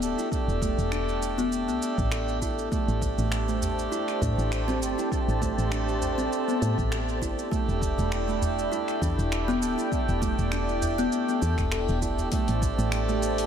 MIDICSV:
0, 0, Header, 1, 7, 480
1, 0, Start_track
1, 0, Key_signature, 0, "minor"
1, 0, Tempo, 600000
1, 255, Time_signature, 4, 2, 24, 8
1, 10771, End_track
2, 0, Start_track
2, 0, Title_t, "Analog synth pad"
2, 0, Program_c, 0, 89
2, 2171, Note_on_c, 0, 67, 80
2, 2171, Note_on_c, 0, 72, 72
2, 2171, Note_on_c, 0, 81, 86
2, 5981, Note_off_c, 0, 67, 0
2, 5981, Note_off_c, 0, 72, 0
2, 5981, Note_off_c, 0, 81, 0
2, 6015, Note_on_c, 0, 64, 77
2, 6015, Note_on_c, 0, 79, 92
2, 6016, Note_on_c, 0, 74, 71
2, 9823, Note_off_c, 0, 64, 0
2, 9823, Note_off_c, 0, 79, 0
2, 9824, Note_off_c, 0, 74, 0
2, 9857, Note_on_c, 0, 67, 82
2, 9857, Note_on_c, 0, 81, 92
2, 9858, Note_on_c, 0, 72, 77
2, 10771, Note_off_c, 0, 67, 0
2, 10771, Note_off_c, 0, 72, 0
2, 10771, Note_off_c, 0, 81, 0
2, 10771, End_track
3, 0, Start_track
3, 0, Title_t, "Harmonium"
3, 0, Program_c, 1, 20
3, 7, Note_on_c, 1, 57, 85
3, 15, Note_on_c, 1, 62, 75
3, 23, Note_on_c, 1, 67, 94
3, 225, Note_off_c, 1, 57, 0
3, 228, Note_off_c, 1, 62, 0
3, 233, Note_off_c, 1, 67, 0
3, 239, Note_on_c, 1, 57, 102
3, 254, Note_on_c, 1, 62, 96
3, 271, Note_on_c, 1, 67, 118
3, 1901, Note_off_c, 1, 57, 0
3, 1908, Note_off_c, 1, 62, 0
3, 1917, Note_off_c, 1, 67, 0
3, 1925, Note_on_c, 1, 57, 78
3, 1934, Note_on_c, 1, 62, 76
3, 1942, Note_on_c, 1, 67, 87
3, 2144, Note_off_c, 1, 57, 0
3, 2148, Note_off_c, 1, 62, 0
3, 2152, Note_off_c, 1, 67, 0
3, 2160, Note_on_c, 1, 57, 96
3, 2175, Note_on_c, 1, 62, 94
3, 2191, Note_on_c, 1, 67, 107
3, 3821, Note_off_c, 1, 57, 0
3, 3829, Note_off_c, 1, 62, 0
3, 3837, Note_off_c, 1, 67, 0
3, 3847, Note_on_c, 1, 57, 83
3, 3855, Note_on_c, 1, 62, 71
3, 3863, Note_on_c, 1, 67, 91
3, 4065, Note_off_c, 1, 57, 0
3, 4069, Note_off_c, 1, 62, 0
3, 4073, Note_off_c, 1, 67, 0
3, 4080, Note_on_c, 1, 57, 102
3, 4096, Note_on_c, 1, 62, 93
3, 4112, Note_on_c, 1, 67, 108
3, 5741, Note_off_c, 1, 57, 0
3, 5749, Note_off_c, 1, 62, 0
3, 5757, Note_off_c, 1, 67, 0
3, 5767, Note_on_c, 1, 57, 85
3, 5776, Note_on_c, 1, 62, 82
3, 5784, Note_on_c, 1, 67, 92
3, 5985, Note_off_c, 1, 57, 0
3, 5989, Note_off_c, 1, 62, 0
3, 5993, Note_off_c, 1, 67, 0
3, 5999, Note_on_c, 1, 57, 106
3, 6015, Note_on_c, 1, 62, 95
3, 6031, Note_on_c, 1, 67, 116
3, 7661, Note_off_c, 1, 57, 0
3, 7669, Note_off_c, 1, 62, 0
3, 7677, Note_off_c, 1, 67, 0
3, 7686, Note_on_c, 1, 57, 86
3, 7693, Note_on_c, 1, 62, 77
3, 7700, Note_on_c, 1, 67, 97
3, 7904, Note_off_c, 1, 57, 0
3, 7908, Note_off_c, 1, 62, 0
3, 7911, Note_off_c, 1, 67, 0
3, 7919, Note_on_c, 1, 57, 111
3, 7935, Note_on_c, 1, 62, 97
3, 7950, Note_on_c, 1, 67, 109
3, 9581, Note_off_c, 1, 57, 0
3, 9589, Note_off_c, 1, 62, 0
3, 9596, Note_off_c, 1, 67, 0
3, 9607, Note_on_c, 1, 57, 79
3, 9615, Note_on_c, 1, 62, 79
3, 9624, Note_on_c, 1, 67, 94
3, 9825, Note_off_c, 1, 57, 0
3, 9829, Note_off_c, 1, 62, 0
3, 9833, Note_off_c, 1, 67, 0
3, 9840, Note_on_c, 1, 57, 106
3, 9855, Note_on_c, 1, 62, 103
3, 9871, Note_on_c, 1, 67, 123
3, 10771, Note_off_c, 1, 57, 0
3, 10771, Note_off_c, 1, 62, 0
3, 10771, Note_off_c, 1, 67, 0
3, 10771, End_track
4, 0, Start_track
4, 0, Title_t, "Kalimba"
4, 0, Program_c, 2, 108
4, 0, Note_on_c, 2, 59, 92
4, 132, Note_off_c, 2, 59, 0
4, 146, Note_on_c, 2, 64, 66
4, 484, Note_off_c, 2, 64, 0
4, 495, Note_on_c, 2, 57, 86
4, 569, Note_off_c, 2, 57, 0
4, 734, Note_on_c, 2, 62, 72
4, 858, Note_off_c, 2, 62, 0
4, 1105, Note_on_c, 2, 59, 86
4, 1209, Note_off_c, 2, 59, 0
4, 1345, Note_on_c, 2, 59, 64
4, 1450, Note_off_c, 2, 59, 0
4, 1695, Note_on_c, 2, 69, 69
4, 1819, Note_off_c, 2, 69, 0
4, 1936, Note_on_c, 2, 64, 71
4, 2165, Note_off_c, 2, 64, 0
4, 2175, Note_on_c, 2, 57, 71
4, 2299, Note_off_c, 2, 57, 0
4, 2546, Note_on_c, 2, 57, 69
4, 2650, Note_off_c, 2, 57, 0
4, 2786, Note_on_c, 2, 57, 68
4, 3124, Note_off_c, 2, 57, 0
4, 3134, Note_on_c, 2, 64, 73
4, 3258, Note_off_c, 2, 64, 0
4, 3374, Note_on_c, 2, 62, 69
4, 3498, Note_off_c, 2, 62, 0
4, 3744, Note_on_c, 2, 60, 92
4, 3972, Note_off_c, 2, 60, 0
4, 3984, Note_on_c, 2, 64, 66
4, 4324, Note_off_c, 2, 64, 0
4, 4334, Note_on_c, 2, 57, 88
4, 4409, Note_off_c, 2, 57, 0
4, 4573, Note_on_c, 2, 62, 72
4, 4698, Note_off_c, 2, 62, 0
4, 4943, Note_on_c, 2, 60, 91
4, 5049, Note_off_c, 2, 60, 0
4, 5183, Note_on_c, 2, 59, 73
4, 5289, Note_off_c, 2, 59, 0
4, 5534, Note_on_c, 2, 69, 74
4, 5658, Note_off_c, 2, 69, 0
4, 5774, Note_on_c, 2, 64, 80
4, 6003, Note_off_c, 2, 64, 0
4, 6012, Note_on_c, 2, 57, 80
4, 6137, Note_off_c, 2, 57, 0
4, 6384, Note_on_c, 2, 57, 72
4, 6489, Note_off_c, 2, 57, 0
4, 6623, Note_on_c, 2, 57, 69
4, 6963, Note_off_c, 2, 57, 0
4, 6974, Note_on_c, 2, 64, 76
4, 7098, Note_off_c, 2, 64, 0
4, 7215, Note_on_c, 2, 62, 73
4, 7338, Note_off_c, 2, 62, 0
4, 7585, Note_on_c, 2, 59, 97
4, 7812, Note_off_c, 2, 59, 0
4, 7823, Note_on_c, 2, 64, 71
4, 8163, Note_off_c, 2, 64, 0
4, 8175, Note_on_c, 2, 57, 96
4, 8249, Note_off_c, 2, 57, 0
4, 8415, Note_on_c, 2, 62, 75
4, 8539, Note_off_c, 2, 62, 0
4, 8787, Note_on_c, 2, 59, 103
4, 8890, Note_off_c, 2, 59, 0
4, 9028, Note_on_c, 2, 59, 71
4, 9131, Note_off_c, 2, 59, 0
4, 9377, Note_on_c, 2, 69, 77
4, 9500, Note_off_c, 2, 69, 0
4, 9617, Note_on_c, 2, 64, 77
4, 9845, Note_off_c, 2, 64, 0
4, 9856, Note_on_c, 2, 57, 80
4, 9979, Note_off_c, 2, 57, 0
4, 10228, Note_on_c, 2, 57, 74
4, 10331, Note_off_c, 2, 57, 0
4, 10468, Note_on_c, 2, 57, 74
4, 10771, Note_off_c, 2, 57, 0
4, 10771, End_track
5, 0, Start_track
5, 0, Title_t, "FM bass"
5, 0, Program_c, 3, 39
5, 12, Note_on_c, 3, 26, 94
5, 123, Note_off_c, 3, 26, 0
5, 381, Note_on_c, 3, 28, 87
5, 581, Note_off_c, 3, 28, 0
5, 624, Note_on_c, 3, 28, 106
5, 1344, Note_on_c, 3, 35, 87
5, 1356, Note_off_c, 3, 28, 0
5, 1437, Note_off_c, 3, 35, 0
5, 1583, Note_on_c, 3, 33, 96
5, 2146, Note_off_c, 3, 33, 0
5, 2303, Note_on_c, 3, 33, 93
5, 2502, Note_off_c, 3, 33, 0
5, 2544, Note_on_c, 3, 33, 101
5, 3106, Note_off_c, 3, 33, 0
5, 3373, Note_on_c, 3, 45, 95
5, 3483, Note_off_c, 3, 45, 0
5, 3504, Note_on_c, 3, 33, 98
5, 3855, Note_on_c, 3, 31, 95
5, 3867, Note_off_c, 3, 33, 0
5, 3964, Note_off_c, 3, 31, 0
5, 4224, Note_on_c, 3, 33, 93
5, 4423, Note_off_c, 3, 33, 0
5, 4465, Note_on_c, 3, 33, 105
5, 5026, Note_off_c, 3, 33, 0
5, 5295, Note_on_c, 3, 45, 88
5, 5404, Note_off_c, 3, 45, 0
5, 5424, Note_on_c, 3, 33, 107
5, 5774, Note_on_c, 3, 31, 97
5, 5786, Note_off_c, 3, 33, 0
5, 5884, Note_off_c, 3, 31, 0
5, 6145, Note_on_c, 3, 28, 91
5, 6343, Note_off_c, 3, 28, 0
5, 6385, Note_on_c, 3, 28, 105
5, 6947, Note_off_c, 3, 28, 0
5, 7214, Note_on_c, 3, 40, 98
5, 7324, Note_off_c, 3, 40, 0
5, 7345, Note_on_c, 3, 28, 102
5, 7696, Note_on_c, 3, 26, 94
5, 7708, Note_off_c, 3, 28, 0
5, 7805, Note_off_c, 3, 26, 0
5, 8065, Note_on_c, 3, 28, 87
5, 8263, Note_off_c, 3, 28, 0
5, 8306, Note_on_c, 3, 28, 102
5, 8867, Note_off_c, 3, 28, 0
5, 9136, Note_on_c, 3, 40, 94
5, 9245, Note_off_c, 3, 40, 0
5, 9264, Note_on_c, 3, 28, 106
5, 9504, Note_off_c, 3, 28, 0
5, 9509, Note_on_c, 3, 28, 93
5, 9828, Note_off_c, 3, 28, 0
5, 9988, Note_on_c, 3, 33, 97
5, 10185, Note_off_c, 3, 33, 0
5, 10226, Note_on_c, 3, 33, 104
5, 10771, Note_off_c, 3, 33, 0
5, 10771, End_track
6, 0, Start_track
6, 0, Title_t, "Udu"
6, 2896, Note_on_c, 9, 64, 84
6, 2976, Note_off_c, 9, 64, 0
6, 3372, Note_on_c, 9, 64, 89
6, 3452, Note_off_c, 9, 64, 0
6, 4815, Note_on_c, 9, 64, 79
6, 4895, Note_off_c, 9, 64, 0
6, 6733, Note_on_c, 9, 64, 89
6, 6813, Note_off_c, 9, 64, 0
6, 7210, Note_on_c, 9, 64, 77
6, 7290, Note_off_c, 9, 64, 0
6, 8655, Note_on_c, 9, 64, 91
6, 8735, Note_off_c, 9, 64, 0
6, 9501, Note_on_c, 9, 64, 67
6, 9581, Note_off_c, 9, 64, 0
6, 9745, Note_on_c, 9, 64, 75
6, 9825, Note_off_c, 9, 64, 0
6, 10771, End_track
7, 0, Start_track
7, 0, Title_t, "Drums"
7, 20, Note_on_c, 9, 82, 72
7, 100, Note_off_c, 9, 82, 0
7, 150, Note_on_c, 9, 82, 33
7, 230, Note_off_c, 9, 82, 0
7, 254, Note_on_c, 9, 36, 114
7, 260, Note_on_c, 9, 82, 45
7, 334, Note_off_c, 9, 36, 0
7, 340, Note_off_c, 9, 82, 0
7, 392, Note_on_c, 9, 82, 21
7, 472, Note_off_c, 9, 82, 0
7, 494, Note_on_c, 9, 36, 103
7, 500, Note_on_c, 9, 82, 74
7, 574, Note_off_c, 9, 36, 0
7, 580, Note_off_c, 9, 82, 0
7, 630, Note_on_c, 9, 82, 32
7, 710, Note_off_c, 9, 82, 0
7, 735, Note_on_c, 9, 26, 88
7, 740, Note_on_c, 9, 82, 42
7, 815, Note_off_c, 9, 26, 0
7, 820, Note_off_c, 9, 82, 0
7, 870, Note_on_c, 9, 82, 20
7, 950, Note_off_c, 9, 82, 0
7, 980, Note_on_c, 9, 82, 71
7, 1060, Note_off_c, 9, 82, 0
7, 1110, Note_on_c, 9, 82, 34
7, 1190, Note_off_c, 9, 82, 0
7, 1218, Note_on_c, 9, 82, 40
7, 1298, Note_off_c, 9, 82, 0
7, 1350, Note_on_c, 9, 82, 21
7, 1430, Note_off_c, 9, 82, 0
7, 1459, Note_on_c, 9, 82, 74
7, 1539, Note_off_c, 9, 82, 0
7, 1584, Note_on_c, 9, 36, 100
7, 1589, Note_on_c, 9, 82, 30
7, 1664, Note_off_c, 9, 36, 0
7, 1669, Note_off_c, 9, 82, 0
7, 1692, Note_on_c, 9, 26, 95
7, 1698, Note_on_c, 9, 82, 43
7, 1772, Note_off_c, 9, 26, 0
7, 1778, Note_off_c, 9, 82, 0
7, 1828, Note_on_c, 9, 82, 20
7, 1908, Note_off_c, 9, 82, 0
7, 1934, Note_on_c, 9, 36, 55
7, 1938, Note_on_c, 9, 82, 70
7, 2014, Note_off_c, 9, 36, 0
7, 2018, Note_off_c, 9, 82, 0
7, 2068, Note_on_c, 9, 82, 33
7, 2148, Note_off_c, 9, 82, 0
7, 2174, Note_on_c, 9, 36, 112
7, 2178, Note_on_c, 9, 82, 42
7, 2254, Note_off_c, 9, 36, 0
7, 2258, Note_off_c, 9, 82, 0
7, 2309, Note_on_c, 9, 82, 22
7, 2389, Note_off_c, 9, 82, 0
7, 2414, Note_on_c, 9, 36, 96
7, 2418, Note_on_c, 9, 82, 68
7, 2494, Note_off_c, 9, 36, 0
7, 2498, Note_off_c, 9, 82, 0
7, 2548, Note_on_c, 9, 82, 30
7, 2628, Note_off_c, 9, 82, 0
7, 2653, Note_on_c, 9, 26, 88
7, 2659, Note_on_c, 9, 82, 38
7, 2733, Note_off_c, 9, 26, 0
7, 2739, Note_off_c, 9, 82, 0
7, 2789, Note_on_c, 9, 82, 20
7, 2869, Note_off_c, 9, 82, 0
7, 2900, Note_on_c, 9, 82, 68
7, 2980, Note_off_c, 9, 82, 0
7, 3030, Note_on_c, 9, 82, 32
7, 3110, Note_off_c, 9, 82, 0
7, 3140, Note_on_c, 9, 82, 39
7, 3220, Note_off_c, 9, 82, 0
7, 3265, Note_on_c, 9, 26, 28
7, 3270, Note_on_c, 9, 82, 20
7, 3345, Note_off_c, 9, 26, 0
7, 3350, Note_off_c, 9, 82, 0
7, 3374, Note_on_c, 9, 36, 92
7, 3379, Note_on_c, 9, 82, 76
7, 3454, Note_off_c, 9, 36, 0
7, 3459, Note_off_c, 9, 82, 0
7, 3510, Note_on_c, 9, 82, 29
7, 3590, Note_off_c, 9, 82, 0
7, 3615, Note_on_c, 9, 26, 91
7, 3620, Note_on_c, 9, 82, 43
7, 3695, Note_off_c, 9, 26, 0
7, 3700, Note_off_c, 9, 82, 0
7, 3751, Note_on_c, 9, 82, 20
7, 3831, Note_off_c, 9, 82, 0
7, 3861, Note_on_c, 9, 82, 76
7, 3941, Note_off_c, 9, 82, 0
7, 3991, Note_on_c, 9, 82, 33
7, 4071, Note_off_c, 9, 82, 0
7, 4094, Note_on_c, 9, 36, 113
7, 4100, Note_on_c, 9, 82, 41
7, 4174, Note_off_c, 9, 36, 0
7, 4180, Note_off_c, 9, 82, 0
7, 4230, Note_on_c, 9, 82, 20
7, 4310, Note_off_c, 9, 82, 0
7, 4334, Note_on_c, 9, 36, 95
7, 4339, Note_on_c, 9, 82, 64
7, 4414, Note_off_c, 9, 36, 0
7, 4419, Note_off_c, 9, 82, 0
7, 4469, Note_on_c, 9, 82, 31
7, 4549, Note_off_c, 9, 82, 0
7, 4573, Note_on_c, 9, 26, 85
7, 4579, Note_on_c, 9, 82, 37
7, 4653, Note_off_c, 9, 26, 0
7, 4659, Note_off_c, 9, 82, 0
7, 4709, Note_on_c, 9, 82, 19
7, 4789, Note_off_c, 9, 82, 0
7, 4818, Note_on_c, 9, 82, 63
7, 4898, Note_off_c, 9, 82, 0
7, 4949, Note_on_c, 9, 82, 31
7, 5029, Note_off_c, 9, 82, 0
7, 5060, Note_on_c, 9, 82, 37
7, 5140, Note_off_c, 9, 82, 0
7, 5190, Note_on_c, 9, 82, 21
7, 5270, Note_off_c, 9, 82, 0
7, 5300, Note_on_c, 9, 82, 71
7, 5380, Note_off_c, 9, 82, 0
7, 5424, Note_on_c, 9, 36, 88
7, 5431, Note_on_c, 9, 82, 29
7, 5504, Note_off_c, 9, 36, 0
7, 5511, Note_off_c, 9, 82, 0
7, 5535, Note_on_c, 9, 26, 96
7, 5540, Note_on_c, 9, 82, 41
7, 5615, Note_off_c, 9, 26, 0
7, 5620, Note_off_c, 9, 82, 0
7, 5671, Note_on_c, 9, 82, 20
7, 5751, Note_off_c, 9, 82, 0
7, 5774, Note_on_c, 9, 36, 51
7, 5780, Note_on_c, 9, 82, 71
7, 5854, Note_off_c, 9, 36, 0
7, 5860, Note_off_c, 9, 82, 0
7, 5911, Note_on_c, 9, 82, 33
7, 5991, Note_off_c, 9, 82, 0
7, 6013, Note_on_c, 9, 36, 110
7, 6021, Note_on_c, 9, 82, 39
7, 6093, Note_off_c, 9, 36, 0
7, 6101, Note_off_c, 9, 82, 0
7, 6151, Note_on_c, 9, 82, 20
7, 6231, Note_off_c, 9, 82, 0
7, 6254, Note_on_c, 9, 36, 96
7, 6261, Note_on_c, 9, 82, 65
7, 6334, Note_off_c, 9, 36, 0
7, 6341, Note_off_c, 9, 82, 0
7, 6390, Note_on_c, 9, 82, 32
7, 6470, Note_off_c, 9, 82, 0
7, 6495, Note_on_c, 9, 26, 90
7, 6501, Note_on_c, 9, 82, 39
7, 6575, Note_off_c, 9, 26, 0
7, 6581, Note_off_c, 9, 82, 0
7, 6631, Note_on_c, 9, 82, 18
7, 6711, Note_off_c, 9, 82, 0
7, 6740, Note_on_c, 9, 82, 68
7, 6820, Note_off_c, 9, 82, 0
7, 6870, Note_on_c, 9, 82, 30
7, 6950, Note_off_c, 9, 82, 0
7, 6980, Note_on_c, 9, 82, 38
7, 7060, Note_off_c, 9, 82, 0
7, 7105, Note_on_c, 9, 26, 31
7, 7110, Note_on_c, 9, 82, 21
7, 7185, Note_off_c, 9, 26, 0
7, 7190, Note_off_c, 9, 82, 0
7, 7214, Note_on_c, 9, 36, 89
7, 7221, Note_on_c, 9, 82, 71
7, 7294, Note_off_c, 9, 36, 0
7, 7301, Note_off_c, 9, 82, 0
7, 7352, Note_on_c, 9, 82, 29
7, 7432, Note_off_c, 9, 82, 0
7, 7456, Note_on_c, 9, 26, 93
7, 7461, Note_on_c, 9, 82, 41
7, 7536, Note_off_c, 9, 26, 0
7, 7541, Note_off_c, 9, 82, 0
7, 7592, Note_on_c, 9, 82, 19
7, 7672, Note_off_c, 9, 82, 0
7, 7700, Note_on_c, 9, 82, 70
7, 7780, Note_off_c, 9, 82, 0
7, 7830, Note_on_c, 9, 82, 30
7, 7910, Note_off_c, 9, 82, 0
7, 7934, Note_on_c, 9, 36, 113
7, 7940, Note_on_c, 9, 82, 43
7, 8014, Note_off_c, 9, 36, 0
7, 8020, Note_off_c, 9, 82, 0
7, 8069, Note_on_c, 9, 82, 20
7, 8149, Note_off_c, 9, 82, 0
7, 8174, Note_on_c, 9, 36, 106
7, 8179, Note_on_c, 9, 82, 64
7, 8254, Note_off_c, 9, 36, 0
7, 8259, Note_off_c, 9, 82, 0
7, 8308, Note_on_c, 9, 82, 30
7, 8388, Note_off_c, 9, 82, 0
7, 8413, Note_on_c, 9, 26, 93
7, 8419, Note_on_c, 9, 82, 42
7, 8493, Note_off_c, 9, 26, 0
7, 8499, Note_off_c, 9, 82, 0
7, 8550, Note_on_c, 9, 82, 19
7, 8630, Note_off_c, 9, 82, 0
7, 8659, Note_on_c, 9, 82, 68
7, 8739, Note_off_c, 9, 82, 0
7, 8788, Note_on_c, 9, 82, 33
7, 8868, Note_off_c, 9, 82, 0
7, 8899, Note_on_c, 9, 82, 39
7, 8979, Note_off_c, 9, 82, 0
7, 9030, Note_on_c, 9, 82, 22
7, 9110, Note_off_c, 9, 82, 0
7, 9139, Note_on_c, 9, 82, 73
7, 9219, Note_off_c, 9, 82, 0
7, 9263, Note_on_c, 9, 26, 29
7, 9265, Note_on_c, 9, 36, 93
7, 9268, Note_on_c, 9, 82, 31
7, 9343, Note_off_c, 9, 26, 0
7, 9345, Note_off_c, 9, 36, 0
7, 9348, Note_off_c, 9, 82, 0
7, 9373, Note_on_c, 9, 26, 98
7, 9378, Note_on_c, 9, 82, 43
7, 9453, Note_off_c, 9, 26, 0
7, 9458, Note_off_c, 9, 82, 0
7, 9508, Note_on_c, 9, 82, 20
7, 9588, Note_off_c, 9, 82, 0
7, 9616, Note_on_c, 9, 36, 57
7, 9619, Note_on_c, 9, 82, 74
7, 9696, Note_off_c, 9, 36, 0
7, 9699, Note_off_c, 9, 82, 0
7, 9749, Note_on_c, 9, 82, 31
7, 9829, Note_off_c, 9, 82, 0
7, 9853, Note_on_c, 9, 46, 72
7, 9856, Note_on_c, 9, 36, 118
7, 9859, Note_on_c, 9, 82, 48
7, 9933, Note_off_c, 9, 46, 0
7, 9936, Note_off_c, 9, 36, 0
7, 9939, Note_off_c, 9, 82, 0
7, 9984, Note_on_c, 9, 46, 33
7, 9989, Note_on_c, 9, 82, 22
7, 10064, Note_off_c, 9, 46, 0
7, 10069, Note_off_c, 9, 82, 0
7, 10096, Note_on_c, 9, 36, 106
7, 10101, Note_on_c, 9, 82, 74
7, 10176, Note_off_c, 9, 36, 0
7, 10181, Note_off_c, 9, 82, 0
7, 10231, Note_on_c, 9, 82, 34
7, 10311, Note_off_c, 9, 82, 0
7, 10336, Note_on_c, 9, 26, 103
7, 10336, Note_on_c, 9, 46, 64
7, 10341, Note_on_c, 9, 82, 42
7, 10416, Note_off_c, 9, 26, 0
7, 10416, Note_off_c, 9, 46, 0
7, 10421, Note_off_c, 9, 82, 0
7, 10472, Note_on_c, 9, 82, 22
7, 10552, Note_off_c, 9, 82, 0
7, 10582, Note_on_c, 9, 82, 70
7, 10662, Note_off_c, 9, 82, 0
7, 10707, Note_on_c, 9, 46, 47
7, 10712, Note_on_c, 9, 82, 34
7, 10771, Note_off_c, 9, 46, 0
7, 10771, Note_off_c, 9, 82, 0
7, 10771, End_track
0, 0, End_of_file